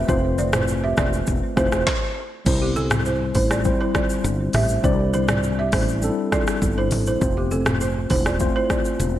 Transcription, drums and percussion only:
0.09 kick loud
0.09 low conga medium
0.09 shaker medium
0.38 high conga medium
0.38 shaker medium
0.53 cross-stick loud
0.53 mid tom loud
0.53 high conga medium
0.53 shaker medium
0.68 shaker medium
0.97 kick medium
0.97 cross-stick loud
0.97 high conga medium
0.97 low conga medium
0.97 shaker medium
1.13 shaker medium
1.27 kick medium
1.27 shaker medium
1.57 kick loud
1.57 cross-stick medium
1.57 high conga medium
1.57 shaker medium
1.72 cross-stick medium
1.72 shaker medium
1.87 kick loud
1.87 snare medium
2.46 kick loud
2.46 crash loud
2.46 low conga medium
2.46 shaker medium
2.76 high conga medium
2.76 shaker medium
2.91 cross-stick loud
2.91 mid tom loud
2.91 high conga medium
2.91 shaker medium
3.06 shaker medium
3.35 kick medium
3.35 open hi-hat medium
3.35 high conga medium
3.35 low conga medium
3.35 shaker medium
3.51 cross-stick medium
3.51 shaker medium
3.65 kick medium
3.65 shaker medium
3.95 kick loud
3.95 cross-stick medium
3.95 high conga medium
3.95 shaker medium
4.09 shaker medium
4.25 high conga medium
4.25 shaker medium
4.53 cross-stick medium
4.53 mid tom loud
4.53 open hi-hat medium
4.53 high conga medium
4.53 low conga medium
4.53 shaker medium
4.69 shaker medium
4.84 kick loud
4.84 low conga medium
4.84 shaker medium
5.14 high conga medium
5.14 shaker medium
5.28 cross-stick loud
5.28 mid tom loud
5.28 high conga medium
5.28 shaker medium
5.43 shaker medium
5.72 kick medium
5.72 cross-stick loud
5.72 open hi-hat medium
5.72 high conga medium
5.72 low conga medium
5.72 shaker medium
5.88 shaker medium
6.02 shaker medium
6.32 kick loud
6.32 cross-stick medium
6.32 high conga medium
6.32 shaker medium
6.47 cross-stick medium
6.47 shaker medium
6.62 kick medium
6.62 high conga medium
6.62 shaker medium
6.91 mid tom loud
6.91 open hi-hat medium
6.91 high conga medium
6.91 low conga medium
6.91 shaker medium
7.06 shaker medium
7.21 kick loud
7.21 low conga medium
7.21 shaker medium
7.51 high conga medium
7.51 shaker medium
7.66 cross-stick loud
7.66 mid tom loud
7.66 high conga medium
7.66 shaker medium
7.81 shaker medium
8.10 kick medium
8.10 open hi-hat medium
8.10 high conga medium
8.10 low conga medium
8.10 shaker medium
8.26 cross-stick medium
8.26 shaker medium
8.40 kick medium
8.40 shaker medium
8.70 kick loud
8.70 cross-stick medium
8.70 high conga medium
8.70 shaker medium
8.85 shaker medium
9.00 high conga medium
9.00 shaker medium

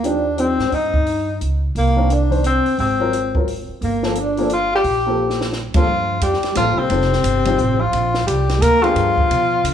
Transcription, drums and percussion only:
0.04 closed hi-hat medium
0.38 closed hi-hat soft
0.59 snare soft
0.72 kick soft
0.72 open hi-hat soft
0.94 kick medium
1.06 open hi-hat soft
1.41 closed hi-hat medium
1.75 kick soft
1.75 open hi-hat soft
2.10 closed hi-hat medium
2.32 open hi-hat soft
2.44 closed hi-hat medium
2.66 open hi-hat soft
2.78 kick soft
2.78 open hi-hat soft
3.13 closed hi-hat medium
3.35 kick medium
3.48 open hi-hat soft
3.82 kick soft
3.82 open hi-hat soft
4.03 snare medium
4.15 closed hi-hat medium
4.37 open hi-hat soft
4.49 closed hi-hat medium
4.84 kick soft
4.84 open hi-hat soft
5.30 snare medium
5.41 snare medium
5.53 snare medium
5.74 kick medium
5.74 ride medium
6.21 kick soft
6.21 hi-hat pedal medium
6.21 ride medium
6.34 snare soft
6.43 snare soft
6.43 ride soft
6.55 kick soft
6.55 hi-hat pedal medium
6.55 ride medium
6.90 kick soft
6.90 ride medium
7.02 snare soft
7.13 snare medium
7.24 kick soft
7.24 hi-hat pedal medium
7.24 ride medium
7.45 ride medium
7.58 kick soft
7.58 hi-hat pedal medium
7.93 kick soft
7.93 ride medium
8.14 snare medium
8.27 kick soft
8.27 hi-hat pedal medium
8.27 ride medium
8.49 snare medium
8.49 ride soft
8.62 kick soft
8.62 hi-hat pedal medium
8.62 ride medium
8.84 ride soft
8.96 kick soft
8.96 ride medium
9.18 kick medium
9.30 kick soft
9.30 ride medium
9.64 kick soft
9.64 hi-hat pedal medium
9.64 ride medium

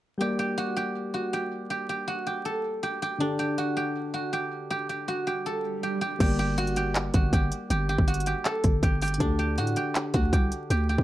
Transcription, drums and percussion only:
6.20 kick loud
6.20 closed hi-hat medium
6.20 crash loud
6.58 closed hi-hat medium
6.67 closed hi-hat soft
6.76 closed hi-hat medium
6.95 clap loud
6.95 closed hi-hat medium
7.14 kick loud
7.14 closed hi-hat medium
7.33 kick medium
7.33 closed hi-hat medium
7.52 closed hi-hat medium
7.70 closed hi-hat medium
7.98 kick medium
8.08 closed hi-hat medium
8.14 closed hi-hat medium
8.20 closed hi-hat medium
8.26 closed hi-hat medium
8.45 clap loud
8.45 closed hi-hat medium
8.64 kick loud
8.64 closed hi-hat medium
8.83 kick medium
8.83 closed hi-hat medium
9.02 closed hi-hat soft
9.02 open hi-hat medium
9.08 closed hi-hat medium
9.14 closed hi-hat medium
9.20 kick loud
9.20 closed hi-hat medium
9.58 closed hi-hat medium
9.67 closed hi-hat soft
9.76 closed hi-hat medium
9.95 clap loud
9.95 closed hi-hat medium
10.14 kick loud
10.14 closed hi-hat medium
10.33 kick medium
10.33 closed hi-hat medium
10.52 closed hi-hat medium
10.70 closed hi-hat medium
10.98 kick medium

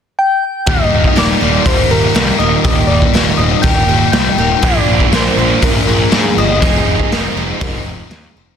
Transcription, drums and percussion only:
0.66 kick loud
0.66 open hi-hat soft
1.04 kick medium
1.17 snare loud
1.17 open hi-hat medium
1.66 kick loud
1.66 open hi-hat medium
2.15 snare loud
2.15 open hi-hat medium
2.65 kick loud
2.65 open hi-hat medium
3.02 kick medium
3.15 snare loud
3.15 open hi-hat soft
3.64 kick loud
3.64 open hi-hat soft
4.13 snare loud
4.13 open hi-hat soft
4.63 kick loud
4.63 open hi-hat medium
5.00 kick medium
5.12 snare loud
5.12 open hi-hat soft
5.62 kick loud
5.62 open hi-hat medium
6.12 snare loud
6.12 open hi-hat medium
6.62 kick loud
6.62 open hi-hat medium
7.00 kick medium
7.12 snare medium
7.12 open hi-hat medium
7.61 kick loud
7.61 open hi-hat medium
8.11 snare loud
8.11 open hi-hat medium

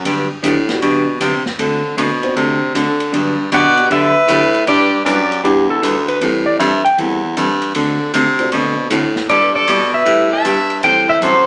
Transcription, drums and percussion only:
0.05 ride medium
0.44 hi-hat pedal medium
0.44 ride medium
0.69 snare medium
0.69 ride soft
0.82 ride medium
1.21 hi-hat pedal medium
1.21 ride medium
1.46 snare soft
1.59 ride medium
1.98 hi-hat pedal medium
1.98 ride medium
2.23 ride soft
2.37 ride medium
2.75 hi-hat pedal medium
2.75 ride medium
3.00 ride soft
3.14 ride medium
3.52 hi-hat pedal medium
3.52 ride medium
3.77 ride soft
3.91 ride medium
4.28 hi-hat pedal medium
4.28 ride medium
4.54 ride soft
4.67 ride medium
5.06 hi-hat pedal medium
5.06 ride medium
5.32 ride soft
5.45 ride medium
5.83 hi-hat pedal soft
5.83 ride medium
6.08 ride soft
6.21 ride medium
6.60 hi-hat pedal medium
6.60 ride medium
6.85 ride soft
6.98 ride medium
7.37 hi-hat pedal medium
7.37 ride medium
7.62 ride soft
7.75 ride medium
8.14 hi-hat pedal medium
8.14 ride medium
8.39 ride soft
8.52 ride medium
8.90 hi-hat pedal medium
8.90 ride medium
9.16 snare soft
9.29 ride medium
9.68 hi-hat pedal medium
9.68 ride medium
10.06 ride medium
10.45 hi-hat pedal medium
10.45 ride medium
10.70 ride soft
10.83 ride medium
11.22 hi-hat pedal medium
11.22 ride medium

